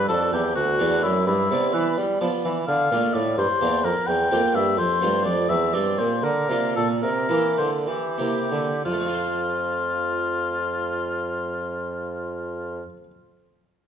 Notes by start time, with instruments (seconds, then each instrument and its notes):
0.08 bassoon F2, harpsichord F2 D4, oboe A4
0.32 bassoon E2, harpsichord E2, oboe G4
0.55 bassoon D2, harpsichord D2, oboe F#4
0.79 harpsichord E2 A3 C4 D4, bassoon E2
1.03 bassoon F#2, harpsichord F#2, oboe E4
1.26 bassoon G2, harpsichord G2, oboe E4
1.50 bassoon C3, harpsichord C3 B3 D4
1.74 bassoon E3, harpsichord E3, oboe B4
1.97 bassoon G3, harpsichord G3
2.21 bassoon F3, harpsichord F3 B3 D4
2.45 bassoon E3, harpsichord E3
2.68 bassoon D3, harpsichord D3, oboe F5
2.91 bassoon A#2, harpsichord A#2 A3 D4 F4
3.14 bassoon A2, harpsichord A2, oboe D5
3.38 bassoon G2, harpsichord G2, oboe C5
3.61 bassoon E2, harpsichord E2 A#3 D4 G4
3.84 bassoon F2, harpsichord F2, oboe A#4
4.07 harpsichord E2, bassoon E2, oboe G5
4.31 bassoon F2, harpsichord F2 A#3 C4 G4
4.54 harpsichord G2, bassoon G2, oboe E5
4.77 harpsichord F2, bassoon F2, oboe C5
5.01 bassoon G2, harpsichord G2 A3 C4 F4
5.24 harpsichord F2, bassoon F2, oboe D5
5.49 harpsichord E2, bassoon E2, oboe E5
5.73 harpsichord G2 C4 G4, bassoon G2, oboe D5
5.98 harpsichord A#2, bassoon A#2, oboe C5
6.23 harpsichord D3, bassoon D3, oboe A#4
6.49 harpsichord C3 A#3 D4 F4, bassoon C3
6.75 bassoon A#2, harpsichord A#2, oboe A4
7.02 harpsichord C3, bassoon C3, oboe A#4
7.29 harpsichord E3 A#3 E4 G4, bassoon E3
7.58 harpsichord D3, bassoon D3, oboe C5
7.87 harpsichord E3, bassoon E3, oboe G4
8.18 harpsichord C3 A#3 E4 G4, bassoon C3
8.51 bassoon D3, harpsichord D3
8.85 bassoon F2, harpsichord F3, oboe F4
8.92 harpsichord A3
8.99 harpsichord C4
9.06 harpsichord F4
9.14 harpsichord C5